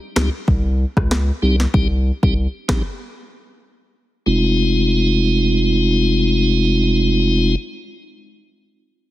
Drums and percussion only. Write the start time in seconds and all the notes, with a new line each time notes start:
0.16 cross-stick, snare
0.48 kick
0.97 kick, cross-stick
1.11 cross-stick, snare
1.60 snare
1.74 kick
2.23 kick
2.69 kick, cross-stick, snare